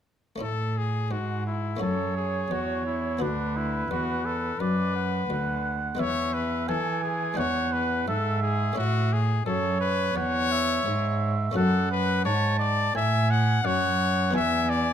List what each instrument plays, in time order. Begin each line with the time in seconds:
0.36 harpsichord A3 C#4 E4
0.41 harpsichord A2, cello A2, trumpet A4
0.77 trumpet G#4
1.11 harpsichord G#2, cello G#2, trumpet F#4
1.47 trumpet E4
1.77 harpsichord A3 C#4 F#4
1.81 harpsichord F#2, cello F#2, trumpet A4, oboe C#5
2.17 trumpet G#4
2.51 harpsichord E2, cello E2, trumpet F#4
2.86 trumpet E4
3.19 harpsichord D2 B3 F#4, cello D2, trumpet D4, oboe B4
3.57 trumpet E4
3.91 harpsichord E2, cello E2, trumpet F#4
4.25 trumpet A4
4.60 cello F#2, harpsichord F#2, trumpet B4, oboe D5
4.95 oboe F#5
5.30 cello D2, harpsichord D2
5.95 harpsichord G#3 B3 E4
5.99 harpsichord E2, cello E2, trumpet C#5, oboe E5
6.34 trumpet B4
6.68 harpsichord E3, cello E3, trumpet A4, oboe G#5
7.03 trumpet G#4
7.34 harpsichord G#3 D4 E4, oboe F#5
7.38 cello E2, harpsichord E2, trumpet C#5
7.73 trumpet B4
8.08 harpsichord G#2, cello G#2, trumpet A4, oboe E5
8.43 trumpet G#4
8.73 harpsichord A3 C#4 E4
8.77 harpsichord A2, cello A2, trumpet F#4
9.13 trumpet G#4
9.46 harpsichord F#2, cello F#2, trumpet A4, oboe C#5
9.81 trumpet B4
10.16 harpsichord E2, cello E2, trumpet C#5, oboe F#5
10.52 oboe E5
10.86 harpsichord G#2, cello G#2
11.51 harpsichord A3 C#4 F#4
11.56 harpsichord F#2, cello F#2, trumpet A4, oboe F#5
11.91 trumpet B4
12.25 harpsichord G#2, cello G#2, trumpet C#5, oboe A5
12.59 trumpet D5
12.95 harpsichord A2, cello A2, trumpet E5, oboe G#5
13.30 trumpet F#5
13.63 harpsichord F#2, cello F#2, trumpet C#5, oboe F#5
14.31 cello E2, harpsichord B3 E4 G#4, oboe G#5
14.35 harpsichord E2, trumpet E5
14.69 trumpet D5